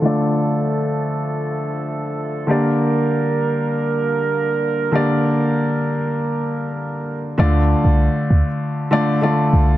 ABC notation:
X:1
M:4/4
L:1/16
Q:1/4=98
K:Dm
V:1 name="Grand piano"
[D,A,Fd]16 | [D,B,Gd]16 | [D,B,Gd]16 | [D,A,Fd]6- [D,A,Fd] z3 [D,A,Fd]2 [D,A,Fd]4 |]
V:2 name="Brass ensemble"
[F,A,Ae]16 | [G,B,DB]16- | [G,B,DB]16 | z16 |]
V:3 name="808-style bass" clef=bass
z16 | z16 | z16 | D,,3 C,,2 z D,, z6 z C,,2 |]